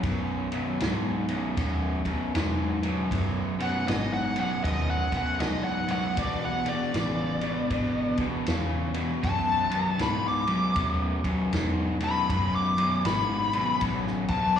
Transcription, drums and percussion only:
0.03 kick, ride
0.52 ride
0.80 snare, ride
1.28 ride
1.57 kick, ride
2.05 kick, ride
2.35 snare, ride
2.83 ride
3.11 kick, ride
3.60 ride
3.88 snare, ride
4.36 ride
4.64 kick, ride
5.12 kick, ride
5.40 snare, ride
5.88 ride
6.17 kick, ride
6.66 ride
6.94 snare, ride
7.41 ride
7.70 kick, ride
8.17 kick, ride
8.46 snare, ride
8.94 ride
9.23 kick, ride
9.71 ride
9.99 snare, ride
10.47 ride
10.76 kick, ride
11.24 kick, ride
11.53 snare, ride
12.00 ride
12.30 kick, ride
12.78 ride
13.05 snare, ride
13.53 ride
13.81 kick, ride
14.07 snare
14.28 kick, ride

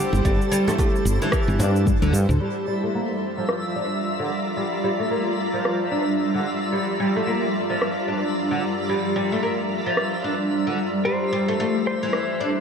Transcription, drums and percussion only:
0.13 high bongo, cabasa
0.25 kick, cabasa
0.41 cabasa
0.51 high conga, cabasa
0.68 low conga, cabasa
0.78 kick, low conga, cabasa
0.96 cabasa
1.06 cabasa
1.22 high bongo, high conga, cabasa
1.32 kick, cross-stick, cabasa
1.48 high conga, cabasa
1.60 high bongo, low conga, cabasa
1.76 cabasa
1.86 kick, high tom, cabasa
2.02 high tom, cabasa
2.14 cabasa
2.29 mid tom, cabasa
2.42 cabasa
2.68 cabasa
2.84 cabasa
3.22 cabasa
3.49 cross-stick
5.65 cross-stick
7.01 cabasa
7.55 cabasa
7.82 cross-stick, cabasa
8.10 cabasa
8.63 cabasa
9.17 cabasa
9.44 cabasa
9.71 cabasa
9.97 cross-stick, cabasa
10.25 cabasa
10.53 cabasa
10.79 cabasa
10.96 cabasa
11.87 cabasa
12.13 cross-stick, cabasa
12.41 cabasa
12.57 cabasa

